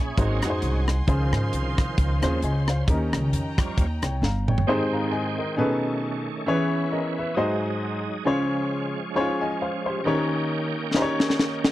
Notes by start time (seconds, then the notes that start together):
Already playing: A#1 C#4 G#4 C#5 E5 B5
0.17 G#1 G#2 F#3 A#3 C4 D#4 F#4 G#4 C5 D#5 F#5 G#5 C6, kick, closed hi-hat
0.42 F2 D#4 F#4 G#4 B4, cross-stick, closed hi-hat
0.50 C5
0.62 C2, closed hi-hat
0.88 cross-stick, closed hi-hat
1.07 C#2 C#3 D#3 F3 C#4 F4 G#4 C5 F5, kick, closed hi-hat
1.32 G#2, cross-stick, closed hi-hat
1.53 C2, closed hi-hat
1.78 kick, cross-stick, closed hi-hat
1.98 C#2, kick, closed hi-hat
2.22 D#2 D#3 F3 C4 C#4 F4 G#4 C5, cross-stick, closed hi-hat
2.42 C#2 D#5 G#5, closed hi-hat
2.68 C5 F5, cross-stick, closed hi-hat
2.88 D#2 D#3 C#4 D#4 G4 A#4 D#5 G5 A#5, kick, closed hi-hat
3.13 C#2, cross-stick, closed hi-hat
3.32 F2, closed hi-hat
3.58 F3 G3 C#4, kick, cross-stick, closed hi-hat
3.77 D#2, kick, closed hi-hat
4.02 C2 C#5 G5, cross-stick, closed hi-hat
4.22 G1 F5 A#5, snare
4.48 C#5 G5, mid tom
4.58 floor tom
4.67 G#2 D#3 G#3 C4 D#4 G4 G#4 C5 G5
4.93 F5 A#5
5.12 D#5 G#5
5.38 A#4 D#5
5.57 B2 A3 C#4 D#4 G#4 A4 B4
6.46 E3 B3 C#4 E4 G#4 B4 C#5
6.92 A#4 D#5
7.18 B4 E5
7.34 G#2 F#3 G#3 D#4 F#4 G#4 C5 D#5
8.25 C#3 F3 C#4 F4 G#4 C5 C#5
9.15 C#4 D#4 G#4 C5 C#5
9.20 F4
9.41 D#5 G#5
9.61 C5 F5
9.86 G4 C5
10.04 D#3 A#3 C#4 D#4 G4 A#4 C#5 G5
10.94 C#4 D#4 G4 A#4 C5, snare
11.02 C#5
11.20 snare
11.30 snare
11.39 snare
11.64 snare